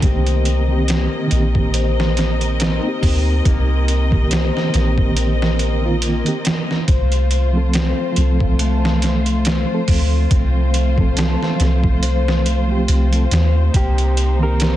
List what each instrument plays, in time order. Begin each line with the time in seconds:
Already playing: harp A3
0.01 808-style bass C2, reed electric piano D#3 A#3 C4, string section C4 A#4 D#5, harp C4, kick, closed hi-hat
0.06 reed electric piano G4
0.27 closed hi-hat
0.45 closed hi-hat
0.68 reed electric piano D#3 A#3 C4
0.72 reed electric piano G4
0.88 harp A#3, snare, closed hi-hat
1.27 reed electric piano D#3 A#3, closed hi-hat
1.32 808-style bass A#1, reed electric piano C4
1.36 reed electric piano G4
1.55 kick
1.74 harp C5, closed hi-hat
2.00 snare
2.17 snare, closed hi-hat
2.41 closed hi-hat
2.60 harp C4, snare, closed hi-hat
2.80 reed electric piano A#3 D#4
2.85 reed electric piano C4 G4
3.03 808-style bass D2, kick, open hi-hat
3.45 808-style bass C2, harp A#3, kick, closed hi-hat
3.88 closed hi-hat
4.10 reed electric piano D#3 A#3 C4, kick
4.14 reed electric piano G4
4.31 harp C5, snare, closed hi-hat
4.57 snare
4.69 reed electric piano D#3 A#3
4.74 808-style bass A#1, reed electric piano C4, snare, closed hi-hat
4.78 reed electric piano G4
4.98 kick
5.16 harp C4, closed hi-hat
5.42 snare
5.59 closed hi-hat
5.81 reed electric piano D#3 A#3 C4
5.86 reed electric piano F4
6.02 harp A#3, closed hi-hat
6.24 reed electric piano D#3 A#3 C4, closed hi-hat
6.28 reed electric piano G4
6.45 snare, closed hi-hat
6.71 snare
6.88 808-style bass C2, string section A3 F4 C5, harp C5, kick, closed hi-hat
7.12 closed hi-hat
7.31 closed hi-hat
7.53 reed electric piano F3 A3 C4
7.57 reed electric piano A4
7.73 harp C4, snare, closed hi-hat
8.12 reed electric piano F3 A3
8.16 808-style bass C2, reed electric piano C4, closed hi-hat
8.21 reed electric piano A4
8.40 kick
8.59 harp A3, closed hi-hat
8.85 snare
9.02 snare, closed hi-hat
9.26 closed hi-hat
9.45 harp C5, snare, closed hi-hat
9.65 reed electric piano F3 A3
9.71 reed electric piano C4 A4
9.88 808-style bass D2, kick, open hi-hat
10.31 808-style bass C2, harp C4, kick, closed hi-hat
10.74 closed hi-hat
10.96 reed electric piano F3 A3 C4, kick
11.00 reed electric piano A4
11.17 harp A3, snare, closed hi-hat
11.43 snare
11.56 reed electric piano F3 A3, closed hi-hat
11.60 808-style bass C2, reed electric piano C4, snare
11.65 reed electric piano A4
11.84 kick
12.03 harp C5, closed hi-hat
12.28 snare
12.46 closed hi-hat
12.68 reed electric piano F3 A3 C4
12.72 reed electric piano G4
12.88 808-style bass C2, harp C4, closed hi-hat
13.11 reed electric piano F3 A3 C4, closed hi-hat
13.15 reed electric piano A4
13.31 808-style bass D#2, snare, closed hi-hat
13.74 808-style bass C2, string section A#3 D#4, harp A#3, clean electric guitar G4, kick, closed hi-hat
13.98 closed hi-hat
14.17 closed hi-hat
14.39 reed electric piano D#3 A#3 C4, clean electric guitar A#4
14.44 reed electric piano G4
14.60 harp C5, snare, closed hi-hat